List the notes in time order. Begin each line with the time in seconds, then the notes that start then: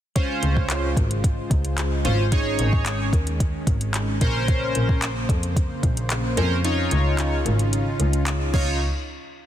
0.16 C#3 G#3 C#4 F4 C5, kick, closed hi-hat
0.43 C#2, closed hi-hat
0.57 kick
0.70 clap, closed hi-hat
0.97 G#1, kick, closed hi-hat
1.11 closed hi-hat
1.24 kick, closed hi-hat
1.51 C#2, kick, closed hi-hat
1.65 closed hi-hat
1.78 clap, closed hi-hat
2.05 G#1 C#4 F4 C5, closed hi-hat
2.32 D#3 C#4 D#4 G#4 C#5, kick, closed hi-hat
2.59 G#1, closed hi-hat
2.73 kick
2.86 clap, closed hi-hat
3.13 D#2, kick, closed hi-hat
3.27 closed hi-hat
3.40 kick, closed hi-hat
3.67 G#1, kick, closed hi-hat
3.81 closed hi-hat
3.94 clap, closed hi-hat
4.21 A#1 C#3 A#3 C#4 A#4 C5, kick, closed hi-hat
4.48 kick, closed hi-hat
4.75 A#1, closed hi-hat
4.89 kick
5.02 clap, closed hi-hat
5.29 F2, kick, closed hi-hat
5.43 closed hi-hat
5.56 kick, closed hi-hat
5.83 A#1, kick, closed hi-hat
5.97 closed hi-hat
6.10 clap, closed hi-hat
6.37 F2 C#4 A#4 C5, closed hi-hat
6.64 C#4 D#4 F4 C#5, closed hi-hat
6.91 C#2, closed hi-hat
7.18 clap, closed hi-hat
7.46 G#1, closed hi-hat
7.59 closed hi-hat
7.73 closed hi-hat
8.00 C#2, closed hi-hat
8.13 closed hi-hat
8.26 clap, closed hi-hat
8.54 C#2 C#3 C#4 D#4 F4 C#5, kick, crash